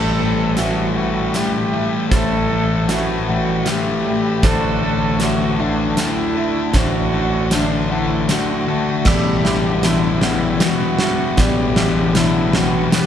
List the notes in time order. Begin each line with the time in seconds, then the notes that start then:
Already playing: A1 A2 E3 G3 A3 A4 C5 E5 A5 C6
0.19 A2 E3 A3
0.56 A2 E3 A3 F#4 E5, snare, closed hi-hat
0.94 A2 E3 G3 A3 F#4 F#5
1.34 A2 E3 A3 C4 G4, snare, closed hi-hat
1.73 A2 E3 G3 A3 E5
2.11 A1 A2 E3 A3 A4 C5 A5, kick, snare, closed hi-hat
2.51 A2 E3 A3
2.88 A2 E3 A3 F#4 E5, snare, closed hi-hat
3.28 A2 E3 G3 A3 F#4 F#5
3.66 A2 E3 A3 C4 G4, snare, closed hi-hat
4.05 A2 E3 G3 A3 E5
4.43 A1 A2 D3 A3 D4 F#4 A4 C5 D5 A5, kick, snare, closed hi-hat
4.82 D3 A3 D4
5.19 D3 A3 D4 F#4 E5, snare, closed hi-hat
5.59 D3 A3 D4 F#5
5.97 D3 A3 C4 D4, snare, closed hi-hat
6.01 E4
6.35 D3 A3 D4 E5
6.73 A1 A2 D3 A3 D4 F#4 C5, kick, snare, closed hi-hat
7.13 D3 A3 D4
7.51 D3 A3 D4 E5, snare, closed hi-hat
7.90 D3 A3 D4 E4 F#5
8.29 D3 A3 C4 D4 F#4, snare, closed hi-hat
8.67 D3 A3 D4 E5
9.05 A1 E2 A2 B2 E3 G3 G4 D5 E5 B5 D6, kick, snare, crash
9.44 E2 B2 D3 E3, snare
9.83 E2 B2 D3 E3 E4 E5, snare, closed hi-hat
10.21 E2 B2 E3 G3 E4 F#5, snare
10.60 E2 B2 E3 B3 F#4, snare, closed hi-hat
10.99 E2 B2 E3 G3 E5, snare
11.38 A1 E2 A2 B2 E3 G4 D5, kick, snare, closed hi-hat
11.76 E2 B2 D3 E3, snare
12.15 E2 B2 D3 E3 E4 E5, snare, closed hi-hat
12.53 E2 B2 E3 G3 F#4 F#5, snare
12.92 E2 B2 E3 B3 G4, snare, closed hi-hat